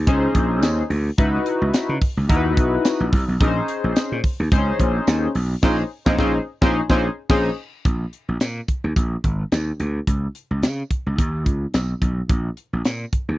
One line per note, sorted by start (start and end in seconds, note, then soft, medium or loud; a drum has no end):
0.07 0.26 C#2 loud
0.07 0.83 C#4 medium
0.07 0.83 D#4 medium
0.07 0.83 G#4 medium
0.07 0.84 C5 loud
0.07 kick loud
0.07 closed hi-hat loud
0.35 0.62 A#1 medium
0.35 kick medium
0.35 closed hi-hat medium
0.62 0.82 D#2 loud
0.62 snare loud
0.62 closed hi-hat medium
0.62 tambourine medium
0.90 1.09 D2 loud
0.90 open hi-hat medium
1.18 1.37 C#2 loud
1.18 1.94 D#4 medium
1.18 1.94 E4 medium
1.18 1.94 F#4 medium
1.18 1.95 B4 loud
1.18 kick loud
1.18 closed hi-hat loud
1.46 closed hi-hat medium
1.62 1.70 C#2 loud
1.74 snare loud
1.74 closed hi-hat loud
1.74 tambourine loud
1.89 1.98 C#3 medium
2.01 kick medium
2.01 open hi-hat medium
2.17 2.26 C#2 medium
2.29 2.57 D#2 loud
2.29 3.05 D#4 medium
2.29 3.05 E4 medium
2.29 3.06 F#4 medium
2.29 2.37 A#4 medium
2.29 kick loud
2.29 closed hi-hat loud
2.36 3.09 B4 loud
2.57 2.76 B1 loud
2.57 kick loud
2.57 closed hi-hat medium
2.85 snare loud
2.85 closed hi-hat loud
2.85 tambourine loud
3.00 3.09 A#1 loud
3.13 3.23 C2 medium
3.13 kick loud
3.13 open hi-hat medium
3.28 3.37 B1 medium
3.40 3.60 A#1 loud
3.40 4.16 C#4 medium
3.40 4.17 D#4 medium
3.40 4.17 G#4 medium
3.40 3.48 A#4 medium
3.40 kick loud
3.40 closed hi-hat medium
3.47 4.20 C5 medium
3.68 closed hi-hat medium
3.84 3.92 A#1 medium
3.96 snare loud
3.96 closed hi-hat medium
3.96 tambourine loud
4.12 4.20 A#2 medium
4.24 kick medium
4.24 open hi-hat medium
4.40 4.48 D#2 medium
4.51 4.71 C#2 loud
4.51 4.59 C4 medium
4.51 5.28 D#4 medium
4.51 5.28 G#4 medium
4.51 5.28 C5 loud
4.51 kick loud
4.51 closed hi-hat loud
4.58 5.31 C#4 loud
4.79 4.99 A#1 medium
4.79 kick medium
4.79 closed hi-hat medium
5.07 5.26 D#2 loud
5.07 snare loud
5.07 closed hi-hat medium
5.07 tambourine loud
5.35 5.54 B1 loud
5.35 open hi-hat medium
5.63 5.82 A#1 loud
5.63 5.77 G#3 loud
5.63 5.77 C4 loud
5.63 5.82 C#4 medium
5.63 5.82 D#4 loud
5.63 5.77 F4 loud
5.63 5.83 G#4 loud
5.63 5.77 C5 loud
5.63 5.83 C5 loud
5.63 kick loud
5.63 snare loud
5.63 crash medium
6.06 6.17 A#1 loud
6.06 6.14 G#3 loud
6.06 6.14 C4 medium
6.06 6.16 C#4 medium
6.06 6.17 D#4 loud
6.06 6.14 F4 medium
6.06 6.17 G#4 medium
6.06 6.14 C5 loud
6.06 6.17 C5 loud
6.06 kick loud
6.06 snare loud
6.18 6.38 A#1 loud
6.18 6.33 G#3 loud
6.18 6.33 C4 medium
6.18 6.38 C#4 medium
6.18 6.38 D#4 loud
6.18 6.33 F4 loud
6.18 6.38 G#4 loud
6.18 6.33 C5 loud
6.18 6.38 C5 loud
6.18 kick loud
6.18 snare loud
6.61 6.80 A#1 loud
6.61 6.75 G#3 medium
6.61 6.76 C4 medium
6.61 6.80 C#4 loud
6.61 6.80 D#4 loud
6.61 6.76 F4 loud
6.61 6.80 G#4 loud
6.61 6.76 C5 loud
6.61 6.80 C5 loud
6.61 kick loud
6.61 snare loud
6.89 7.08 A#1 loud
6.89 7.03 G#3 loud
6.89 7.03 C4 loud
6.89 7.08 C#4 loud
6.89 7.08 D#4 loud
6.89 7.03 F4 loud
6.89 7.08 G#4 loud
6.89 7.03 C5 loud
6.89 7.08 C5 loud
6.89 kick loud
6.89 snare loud
7.29 7.49 A#1 loud
7.29 7.44 G#3 loud
7.29 7.44 C4 loud
7.29 7.49 C#4 loud
7.29 7.49 D#4 loud
7.29 7.44 F4 loud
7.29 7.49 G#4 loud
7.29 7.44 C5 loud
7.29 7.49 C5 loud
7.29 kick loud
7.29 snare medium
7.29 crash medium
7.85 8.04 A#1 loud
7.85 kick loud
7.85 closed hi-hat medium
8.13 closed hi-hat medium
8.29 8.37 A#1 medium
8.40 8.60 A#2 loud
8.40 snare loud
8.40 closed hi-hat medium
8.40 tambourine medium
8.68 kick medium
8.68 closed hi-hat medium
8.84 8.92 D#2 medium
8.96 9.15 A#1 loud
8.96 kick loud
8.96 closed hi-hat loud
9.24 9.43 G#1 loud
9.24 kick medium
9.24 closed hi-hat medium
9.52 9.71 D#2 medium
9.52 snare loud
9.52 closed hi-hat medium
9.52 tambourine medium
9.80 9.99 D2 medium
9.80 closed hi-hat medium
10.07 10.26 C#2 loud
10.07 kick loud
10.07 closed hi-hat medium
10.35 closed hi-hat medium
10.51 10.64 C#2 medium
10.63 10.82 C#3 loud
10.63 snare loud
10.63 closed hi-hat medium
10.63 tambourine medium
10.90 kick medium
10.90 closed hi-hat medium
11.06 11.15 C#2 medium
11.18 11.46 D#2 medium
11.18 kick loud
11.18 closed hi-hat loud
11.46 11.65 C#2 medium
11.46 kick medium
11.46 closed hi-hat medium
11.74 11.93 B1 medium
11.74 snare loud
11.74 closed hi-hat medium
11.74 tambourine medium
12.02 12.21 B1 medium
12.02 kick medium
12.02 closed hi-hat medium
12.29 12.49 A#1 loud
12.29 kick loud
12.29 closed hi-hat medium
12.57 closed hi-hat medium
12.73 12.81 A#1 medium
12.85 13.04 A#2 loud
12.85 snare loud
12.85 closed hi-hat medium
12.85 tambourine medium
13.13 kick medium
13.13 closed hi-hat medium
13.29 13.37 D#2 medium